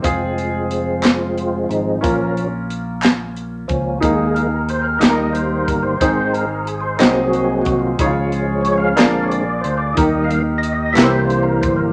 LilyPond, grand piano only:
<<
  \new Staff \with { instrumentName = "Grand piano" } { \time 6/8 \key aes \major \tempo 4. = 60 <c' f' aes'>2. | <des' f' bes'>2. | <ees' aes' bes'>4. <ees' g' aes' bes'>4. | <ees' aes' c''>4. <c' ees' ges' aes' ees''>4. |
<ees' f' aes' des''>4. <bes d' f' aes' d''>4. | <ees' g' bes'>4. <bes c' e' g' ces'' c''>4. | }
  \new Staff \with { instrumentName = "Grand piano" } { \clef bass \time 6/8 \key aes \major r2. | bes,4. r4. | ees4. ees4. | aes,4. c4. |
des4. bes,4. | ees4. c4. | }
>>